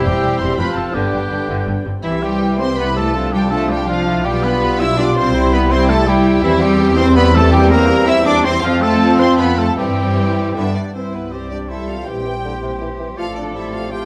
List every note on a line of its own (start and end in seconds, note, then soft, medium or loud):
0.00 0.59 E3 medium
0.00 0.55 G3 medium
0.00 0.57 G3 medium
0.00 0.60 G3 medium
0.00 0.95 C4 medium
0.00 0.57 E4 medium
0.00 0.58 G4 medium
0.00 0.55 C5 medium
0.00 0.55 E6 medium
0.05 0.14 E1 medium
0.05 0.14 E2 medium
0.05 0.14 E3 medium
0.05 0.40 G4 loud
0.05 0.40 G5 loud
0.24 0.31 E1 medium
0.24 0.31 E2 medium
0.24 0.31 C3 medium
0.40 0.49 E1 loud
0.40 0.48 E2 medium
0.40 0.58 C3 medium
0.40 0.60 C5 medium
0.40 0.58 C6 loud
0.58 0.66 F1 medium
0.58 0.66 F2 medium
0.58 0.95 C3 medium
0.58 0.96 F3 medium
0.58 0.95 F3 medium
0.58 0.67 A3 medium
0.58 0.95 C4 medium
0.58 0.94 F4 medium
0.58 0.76 B4 medium
0.58 0.96 C5 medium
0.58 0.76 B5 loud
0.58 0.94 F6 medium
0.76 0.84 F1 medium
0.76 0.84 F2 medium
0.76 0.84 F3 medium
0.76 0.96 A4 medium
0.76 0.95 A5 medium
0.93 1.02 G1 medium
0.93 1.02 G2 medium
0.93 1.85 D3 medium
0.93 1.12 D3 medium
0.93 1.85 D3 medium
0.93 1.85 G3 medium
0.93 1.83 G3 medium
0.93 1.27 B3 medium
0.93 1.84 B3 medium
0.93 1.27 D4 medium
0.93 1.86 D4 medium
0.93 1.85 G4 medium
0.93 1.85 B4 medium
0.93 1.85 G5 loud
0.93 1.85 G6 medium
1.13 1.21 G1 medium
1.13 1.21 G2 medium
1.13 1.20 D3 medium
1.31 1.39 G1 medium
1.31 1.39 G2 medium
1.31 1.38 D3 medium
1.31 1.48 D4 medium
1.48 1.57 G1 medium
1.48 1.57 G2 medium
1.48 1.65 D3 medium
1.48 1.57 E4 medium
1.67 1.75 G1 medium
1.67 1.74 G2 medium
1.67 1.74 D3 medium
1.67 1.85 D4 medium
1.85 1.93 G1 medium
1.85 1.93 G2 medium
1.85 1.93 D3 medium
1.85 2.04 C4 medium
2.03 4.21 C2 medium
2.03 2.21 E3 medium
2.03 3.16 E3 medium
2.03 2.21 E3 medium
2.03 3.11 G3 medium
2.03 2.21 C4 medium
2.03 2.10 E4 medium
2.03 3.11 E4 medium
2.03 2.24 E4 medium
2.03 2.21 G4 medium
2.03 3.17 G4 medium
2.03 2.21 E5 medium
2.22 2.59 G3 medium
2.22 2.41 E4 medium
2.22 2.59 G4 medium
2.22 2.42 C5 medium
2.22 2.60 G5 medium
2.22 2.60 G5 loud
2.41 2.60 C4 medium
2.41 2.60 G4 medium
2.59 2.67 C4 medium
2.59 2.78 C4 medium
2.59 2.78 E4 medium
2.59 2.78 C5 loud
2.59 2.68 C5 medium
2.59 2.78 C5 medium
2.59 2.78 C6 loud
2.59 2.78 C6 medium
2.78 2.86 B3 medium
2.78 2.86 B3 loud
2.78 2.95 C4 medium
2.78 2.95 G4 medium
2.78 2.97 B4 loud
2.78 2.96 B4 loud
2.78 2.96 B5 loud
2.78 2.97 B5 loud
2.96 3.33 A3 medium
2.96 3.15 E4 medium
2.96 3.33 A4 medium
2.96 3.34 A4 medium
2.96 3.15 C5 medium
2.96 3.33 A5 loud
3.14 3.51 F3 medium
3.14 3.50 F3 medium
3.14 3.32 C4 medium
3.14 3.50 D4 medium
3.14 3.32 F4 medium
3.33 3.51 G3 loud
3.33 3.41 G3 medium
3.33 3.52 D4 medium
3.33 3.50 G4 medium
3.33 3.51 G4 medium
3.33 3.52 A4 medium
3.33 3.51 G5 loud
3.33 3.41 G5 medium
3.50 3.88 F3 medium
3.50 3.70 A3 loud
3.50 3.70 C4 medium
3.50 3.87 D4 medium
3.50 3.70 F4 medium
3.50 3.71 A4 medium
3.50 3.70 A4 medium
3.50 3.70 A5 loud
3.50 3.59 A5 loud
3.69 3.88 G3 loud
3.69 3.88 G3 medium
3.69 3.88 D4 medium
3.69 3.87 G4 medium
3.69 3.88 G4 loud
3.69 3.88 A4 medium
3.69 3.88 G5 medium
3.69 3.89 G5 loud
3.87 4.24 F3 medium
3.87 4.26 F3 medium
3.87 4.25 F3 medium
3.87 4.06 C4 medium
3.87 4.26 D4 medium
3.87 4.06 D4 medium
3.87 4.26 F4 medium
3.87 4.06 F4 medium
3.87 4.26 F4 medium
3.87 4.25 F5 loud
4.07 4.25 D4 medium
4.07 4.25 E4 medium
4.07 4.25 A4 medium
4.24 5.33 B1 loud
4.24 4.98 G3 medium
4.24 4.43 G3 loud
4.24 4.97 G3 medium
4.24 4.42 B3 medium
4.24 4.97 F4 medium
4.24 4.43 F4 medium
4.24 4.97 F4 medium
4.24 4.45 G4 loud
4.24 4.43 G4 loud
4.24 4.43 G5 loud
4.24 4.44 G5 loud
4.43 4.79 B3 loud
4.43 4.62 D4 medium
4.43 4.62 G4 medium
4.43 4.81 B4 loud
4.43 4.80 B4 loud
4.43 4.80 B5 loud
4.62 4.80 B3 medium
4.62 4.80 F4 medium
4.79 4.98 D4 medium
4.79 4.88 E4 loud
4.79 4.98 E4 loud
4.79 4.98 G4 medium
4.79 4.98 E5 medium
4.79 4.99 E5 loud
4.79 4.98 E6 loud
4.79 4.99 E6 loud
4.97 5.34 G3 medium
4.97 5.15 B3 medium
4.97 5.16 D4 loud
4.97 5.16 D4 medium
4.97 5.37 F4 medium
4.97 5.15 F4 medium
4.97 5.34 F4 medium
4.97 5.16 D5 medium
4.97 5.17 D5 loud
4.97 5.16 D6 loud
4.97 5.17 D6 loud
5.15 5.53 C4 loud
5.15 5.35 D4 medium
5.15 5.35 G4 medium
5.15 5.53 C5 loud
5.15 5.55 C5 loud
5.15 5.52 C6 loud
5.35 6.44 C2 loud
5.35 5.52 G3 medium
5.35 5.71 G3 medium
5.35 5.70 G3 medium
5.35 5.52 E4 medium
5.35 5.70 E4 medium
5.52 5.71 B3 loud
5.52 5.72 B3 loud
5.52 5.71 C4 medium
5.52 5.71 G4 medium
5.52 5.71 B4 loud
5.52 5.72 B4 loud
5.52 5.71 B5 loud
5.52 5.60 B5 loud
5.70 6.07 G3 loud
5.70 5.89 G3 medium
5.70 5.89 C4 loud
5.70 5.90 C4 loud
5.70 6.06 E4 loud
5.70 5.89 E4 medium
5.70 6.07 E4 loud
5.70 5.91 C5 loud
5.70 5.90 C5 loud
5.70 5.89 C6 loud
5.88 6.07 A3 loud
5.88 6.08 A3 loud
5.88 6.07 C4 medium
5.88 6.07 G4 medium
5.88 6.09 A4 loud
5.88 6.07 A4 loud
5.88 6.06 A5 loud
5.88 6.07 A5 loud
6.06 6.24 G3 medium
6.06 6.43 G3 medium
6.06 6.44 G3 loud
6.06 6.43 G3 medium
6.06 6.42 G3 medium
6.06 6.24 E4 medium
6.06 6.43 E4 loud
6.06 6.43 E4 medium
6.06 6.43 G4 loud
6.06 6.44 G4 loud
6.06 6.42 G5 loud
6.06 6.44 G5 loud
6.25 6.43 C4 medium
6.25 6.41 G4 medium
6.43 8.63 E2 loud
6.43 6.61 E3 loud
6.43 6.51 E3 loud
6.43 7.50 G3 loud
6.43 8.45 G3 loud
6.43 7.52 C4 loud
6.43 8.59 C4 loud
6.43 6.60 E4 medium
6.43 6.61 E4 loud
6.43 6.62 E4 loud
6.43 6.60 G4 medium
6.43 6.61 E5 loud
6.43 6.62 E5 loud
6.60 6.97 G3 loud
6.60 6.79 C4 medium
6.60 6.78 E4 medium
6.60 6.98 G4 loud
6.60 7.00 G4 loud
6.60 6.97 G5 loud
6.79 6.97 E4 medium
6.79 6.98 G4 medium
6.97 7.16 C4 loud
6.97 7.16 C4 medium
6.97 7.16 C4 loud
6.97 7.14 E4 medium
6.97 7.16 C5 loud
6.97 7.17 C5 loud
6.97 7.04 C6 loud
6.97 7.16 C6 loud
7.15 7.24 B3 loud
7.15 7.33 E4 medium
7.15 7.33 G4 medium
7.15 7.36 B4 loud
7.15 7.35 B4 loud
7.15 7.34 B5 loud
7.15 7.35 B5 loud
7.34 7.52 A3 loud
7.34 7.42 A3 loud
7.34 7.53 C4 medium
7.34 7.53 E4 medium
7.34 7.52 A4 loud
7.34 7.53 A4 loud
7.34 7.53 A5 loud
7.52 7.70 G3 loud
7.52 8.61 G3 loud
7.52 7.71 G3 loud
7.52 7.69 A#3 medium
7.52 8.61 C4 loud
7.52 7.69 G4 loud
7.52 7.61 G4 loud
7.52 7.71 G4 loud
7.52 7.71 G5 loud
7.71 8.08 A#3 loud
7.71 8.07 A#3 loud
7.71 7.89 C4 medium
7.71 7.89 E4 medium
7.71 8.07 A#4 loud
7.71 8.07 A#5 loud
7.89 8.08 A#3 medium
7.89 8.08 G4 medium
8.07 8.26 C4 medium
8.07 8.26 E4 loud
8.07 8.15 E4 loud
8.07 8.26 E4 medium
8.07 8.26 E5 loud
8.07 8.27 E5 loud
8.07 8.25 E6 loud
8.07 8.26 E6 loud
8.25 8.43 A#3 medium
8.25 8.44 D4 loud
8.25 8.43 G4 medium
8.25 8.46 D5 loud
8.25 8.34 D5 loud
8.25 8.31 D6 loud
8.25 8.44 D6 loud
8.43 8.52 C4 loud
8.43 8.62 C4 medium
8.43 8.63 C4 loud
8.43 8.63 E4 medium
8.43 8.63 C5 loud
8.43 8.62 C6 loud
8.62 9.74 F2 loud
8.62 9.78 F3 loud
8.62 8.81 F3 loud
8.62 9.61 F3 loud
8.62 8.81 F3 loud
8.62 9.61 C4 medium
8.62 9.73 C4 loud
8.62 10.39 C4 loud
8.62 9.73 F4 loud
8.62 8.84 F4 loud
8.62 8.82 F4 loud
8.62 8.81 F5 loud
8.81 9.18 A3 loud
8.81 9.19 A3 loud
8.81 9.21 A4 loud
8.81 9.19 A4 loud
8.81 9.18 A5 loud
8.81 9.19 A5 loud
9.18 9.27 C4 loud
9.18 9.41 C5 medium
9.18 9.39 C5 loud
9.18 9.37 C6 loud
9.18 9.38 C6 medium
9.37 9.57 B3 loud
9.37 9.60 B4 loud
9.37 9.58 B4 loud
9.37 9.57 B5 loud
9.37 9.58 B5 loud
9.57 9.66 A3 loud
9.57 9.66 A3 medium
9.57 9.78 A4 medium
9.57 9.78 A4 loud
9.57 9.77 A5 loud
9.77 10.55 G2 medium
9.77 10.57 E3 medium
9.77 10.56 E3 medium
9.77 10.73 G3 medium
9.77 10.54 C4 medium
9.77 10.55 C4 medium
9.77 10.56 E4 medium
9.77 10.73 G4 medium
9.77 10.55 G4 medium
9.77 10.73 G5 loud
9.77 10.26 G5 loud
10.55 10.75 G2 medium
10.55 10.75 D3 medium
10.55 10.65 D3 medium
10.55 10.75 B3 medium
10.55 10.75 D4 medium
10.55 10.65 E4 medium
10.55 10.74 E5 medium
10.75 10.94 D4 medium
10.75 10.94 D5 medium
10.75 10.95 D5 medium
10.94 12.03 C2 soft
10.94 13.14 E3 soft
10.94 11.34 E3 soft
10.94 13.14 G3 soft
10.94 13.14 C4 soft
10.94 11.15 C4 medium
10.94 13.15 C4 soft
10.94 13.14 E4 soft
10.94 11.30 E4 medium
10.94 13.15 G4 soft
10.94 11.13 C5 medium
10.94 11.33 E5 soft
11.13 11.34 B3 soft
11.13 11.32 B4 medium
11.13 11.32 B4 soft
11.32 12.08 G3 soft
11.32 11.51 C4 medium
11.32 11.69 G4 soft
11.32 11.51 C5 medium
11.32 11.52 C5 medium
11.32 11.71 D5 soft
11.51 11.71 D4 medium
11.51 11.69 D5 medium
11.51 11.58 D5 medium
11.69 11.90 E4 medium
11.69 12.07 A4 soft
11.69 12.07 C5 soft
11.69 11.88 E5 medium
11.88 12.09 F4 medium
11.88 12.06 F5 medium
11.88 12.07 F5 medium
12.06 13.18 A#1 medium
12.06 12.25 E3 soft
12.06 12.81 G4 medium
12.06 12.43 G4 medium
12.06 13.19 C5 medium
12.06 12.79 G5 medium
12.06 12.82 G5 medium
12.26 12.34 E3 medium
12.44 12.53 D3 medium
12.44 13.17 G4 medium
12.62 12.71 C3 medium
12.81 12.90 E3 medium
13.00 13.08 E3 medium
13.17 14.05 A1 medium
13.17 14.05 F3 soft
13.17 13.57 F3 medium
13.17 14.05 A3 medium
13.17 14.05 C4 medium
13.17 14.05 F4 medium
13.17 13.26 F4 medium
13.17 13.92 A4 medium
13.17 14.05 C5 medium
13.17 13.92 D5 medium
13.17 13.24 F5 medium
13.17 13.35 F5 medium
13.36 13.57 D4 medium
13.36 13.43 D5 medium
13.55 13.93 G3 medium
13.55 13.73 E4 medium
13.55 13.73 E5 medium
13.73 13.82 F4 medium
13.73 13.92 F5 medium
13.91 14.05 F3 medium
13.91 14.05 F4 medium
13.91 14.05 G4 medium
13.91 14.05 C5 medium
13.91 14.05 G5 medium